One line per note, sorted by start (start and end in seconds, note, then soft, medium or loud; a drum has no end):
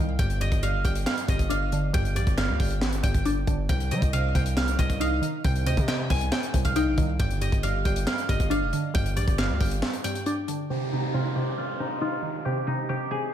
0.00 0.18 C2 loud
0.00 0.19 C3 medium
0.00 0.19 D#3 medium
0.00 0.19 D#4 medium
0.00 0.41 D#5 medium
0.00 0.62 F5 medium
0.00 0.19 G5 medium
0.19 0.50 G1 loud
0.19 0.39 G2 medium
0.19 0.84 G5 loud
0.19 kick loud
0.19 closed hi-hat medium
0.30 closed hi-hat medium
0.41 0.62 G2 medium
0.41 1.28 D#5 medium
0.41 closed hi-hat medium
0.52 0.83 G1 loud
0.52 kick loud
0.52 closed hi-hat medium
0.63 0.83 G2 medium
0.63 1.06 F5 medium
0.63 closed hi-hat medium
0.85 1.06 G1 loud
0.85 1.27 G2 medium
0.85 1.94 G5 medium
0.85 kick medium
0.85 closed hi-hat medium
0.95 closed hi-hat medium
1.07 1.50 F5 medium
1.07 snare loud
1.07 clap medium
1.18 closed hi-hat medium
1.28 1.91 G1 loud
1.28 1.92 G2 medium
1.28 2.22 D#5 medium
1.28 kick loud
1.28 closed hi-hat medium
1.39 kick loud
1.39 closed hi-hat medium
1.49 2.59 D4 medium
1.49 2.37 F5 medium
1.49 closed hi-hat medium
1.72 2.82 D3 medium
1.72 closed hi-hat medium
1.93 2.17 G1 loud
1.93 2.14 G2 medium
1.93 2.59 G5 loud
1.93 kick loud
1.93 closed hi-hat medium
2.05 closed hi-hat medium
2.16 2.26 A#1 loud
2.16 2.36 G2 medium
2.16 3.97 D5 medium
2.16 closed hi-hat medium
2.27 2.50 G1 loud
2.27 kick loud
2.27 closed hi-hat medium
2.38 2.59 G2 medium
2.38 4.04 F5 medium
2.38 snare loud
2.38 clap medium
2.49 2.59 D2 loud
2.60 2.83 G1 loud
2.60 3.02 G2 medium
2.60 3.03 G5 medium
2.60 kick medium
2.60 open hi-hat medium
2.71 closed hi-hat medium
2.82 2.94 G#1 loud
2.82 snare loud
2.82 clap medium
2.93 3.03 G1 loud
2.93 closed hi-hat medium
3.03 3.46 G1 loud
3.03 3.69 G2 medium
3.03 3.69 G5 medium
3.03 kick loud
3.03 closed hi-hat medium
3.14 kick loud
3.14 closed hi-hat medium
3.25 3.69 D4 loud
3.25 closed hi-hat medium
3.47 3.68 G1 loud
3.47 3.69 D3 medium
3.47 kick loud
3.47 closed hi-hat medium
3.69 3.93 C2 loud
3.69 3.90 C3 loud
3.69 4.35 G5 loud
3.69 kick loud
3.69 closed hi-hat medium
3.80 closed hi-hat medium
3.91 4.12 C3 medium
3.91 4.02 G3 loud
3.91 4.79 D#5 medium
3.91 closed hi-hat medium
4.02 4.34 C2 loud
4.02 kick loud
4.02 closed hi-hat medium
4.13 4.34 C3 medium
4.13 4.57 F5 medium
4.13 closed hi-hat medium
4.35 4.77 C2 loud
4.35 4.78 C3 medium
4.35 5.44 G5 medium
4.35 kick medium
4.35 closed hi-hat medium
4.46 closed hi-hat medium
4.57 5.00 F5 medium
4.57 snare loud
4.57 clap medium
4.68 closed hi-hat medium
4.79 5.21 C2 loud
4.79 5.44 C3 medium
4.79 5.66 D#5 medium
4.79 kick loud
4.79 closed hi-hat medium
4.90 kick loud
4.90 closed hi-hat medium
5.00 6.10 D#4 loud
5.00 6.65 F5 medium
5.00 closed hi-hat medium
5.22 6.32 D#3 medium
5.22 closed hi-hat medium
5.44 5.68 C2 loud
5.44 5.66 C3 loud
5.44 5.88 G5 medium
5.44 kick loud
5.44 closed hi-hat medium
5.56 closed hi-hat medium
5.66 5.77 D2 loud
5.66 5.87 C3 medium
5.66 7.41 D#5 medium
5.66 closed hi-hat medium
5.77 6.09 C3 loud
5.77 kick loud
5.77 closed hi-hat medium
5.88 6.09 C3 medium
5.88 6.16 G5 medium
5.88 snare loud
5.88 clap medium
6.10 6.31 C2 loud
6.10 6.52 C3 medium
6.10 6.38 G#5 medium
6.10 kick medium
6.10 open hi-hat medium
6.21 closed hi-hat medium
6.32 6.75 G5 medium
6.32 snare loud
6.32 clap medium
6.43 closed hi-hat medium
6.54 6.88 C2 loud
6.54 7.19 C3 medium
6.54 kick loud
6.54 closed hi-hat medium
6.65 7.63 F5 medium
6.65 kick loud
6.65 closed hi-hat medium
6.76 7.20 D#4 loud
6.76 7.19 G5 medium
6.76 closed hi-hat medium
6.87 6.97 A#1 loud
6.98 7.19 C2 loud
6.98 7.20 D#3 medium
6.98 kick loud
6.98 closed hi-hat medium
7.20 7.51 G1 loud
7.20 7.40 G2 medium
7.20 7.85 G5 loud
7.20 kick loud
7.20 closed hi-hat medium
7.31 closed hi-hat medium
7.41 7.63 G2 medium
7.41 8.29 D#5 medium
7.41 closed hi-hat medium
7.52 7.84 G1 loud
7.52 kick loud
7.52 closed hi-hat medium
7.63 7.84 G2 medium
7.63 8.07 F5 medium
7.63 closed hi-hat medium
7.85 8.06 G1 loud
7.85 8.27 G2 medium
7.85 8.94 G5 medium
7.85 kick medium
7.85 closed hi-hat medium
7.96 closed hi-hat medium
8.07 8.50 F5 medium
8.07 snare loud
8.07 clap medium
8.18 closed hi-hat medium
8.29 8.39 G1 loud
8.29 8.93 G2 medium
8.29 9.23 D#5 medium
8.29 kick loud
8.29 closed hi-hat medium
8.40 8.63 G1 loud
8.40 kick loud
8.40 closed hi-hat medium
8.50 9.60 D4 medium
8.50 9.38 F5 medium
8.50 closed hi-hat medium
8.62 8.72 F1 loud
8.73 9.83 D3 medium
8.73 closed hi-hat medium
8.94 9.18 G1 loud
8.94 9.15 G2 medium
8.94 9.60 G5 loud
8.94 kick loud
8.94 closed hi-hat medium
9.06 closed hi-hat medium
9.16 9.27 A#1 loud
9.16 9.37 G2 medium
9.16 10.98 D5 medium
9.16 closed hi-hat medium
9.28 9.51 G1 loud
9.28 kick loud
9.28 closed hi-hat medium
9.38 9.60 G2 medium
9.38 11.05 F5 medium
9.38 snare loud
9.38 clap medium
9.50 9.60 D2 loud
9.60 9.82 G1 loud
9.60 10.03 G2 medium
9.60 10.04 G5 medium
9.60 kick loud
9.60 open hi-hat medium
9.71 closed hi-hat medium
9.82 snare loud
9.82 clap medium
9.93 closed hi-hat medium
10.04 10.70 G2 medium
10.04 11.59 G5 medium
10.04 closed hi-hat medium
10.15 closed hi-hat medium
10.26 10.70 D4 loud
10.26 closed hi-hat medium
10.48 10.70 D3 medium
10.48 closed hi-hat medium
10.70 10.91 C3 medium
10.70 11.35 G4 medium
10.70 downlifter medium
10.92 11.13 C3 medium
10.92 11.79 D#4 medium
11.14 11.35 C3 medium
11.14 11.57 F4 medium
11.36 11.79 C3 medium
11.36 12.45 G4 medium
11.58 12.01 F4 medium
11.79 12.44 C3 medium
11.79 12.66 D#4 medium
12.01 13.11 D#4 medium
12.01 13.34 F4 medium
12.22 13.32 D#3 medium
12.45 12.66 C3 loud
12.45 12.89 G4 medium
12.67 12.88 C3 medium
12.67 13.34 D#4 medium
12.89 13.10 C3 medium
12.89 13.17 G4 medium
13.11 13.34 C3 medium
13.11 13.34 G#4 medium